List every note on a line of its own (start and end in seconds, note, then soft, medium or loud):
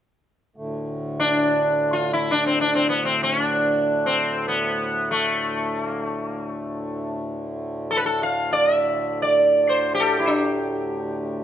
0.56 11.44 D2 medium
0.56 11.44 A2 medium
1.20 1.95 D4 medium
1.93 2.12 F4 medium
2.13 2.32 E4 medium
2.31 2.46 D4 medium
2.46 2.60 C4 medium
2.61 2.75 D4 medium
2.75 2.89 C4 medium
2.89 3.05 B3 medium
3.05 3.23 C4 medium
3.23 3.43 C#4 medium
3.43 4.06 D4 medium
4.06 4.48 C4 medium
4.48 5.11 B3 medium
5.11 5.85 A3 medium
5.85 6.05 A#3 medium
6.05 6.26 A3 medium
6.26 6.46 A#3 medium
6.46 7.19 A3 medium
7.91 7.98 A4 medium
7.97 8.05 B4 medium
8.06 8.22 A4 medium
8.23 8.52 F5 medium
8.53 8.74 D5 medium
8.74 9.22 E5 medium
9.22 9.66 D5 medium
9.69 9.94 C5 medium
9.95 11.44 G4 medium
10.00 10.19 A4 medium
10.20 10.28 E4 soft
10.27 11.44 D4 medium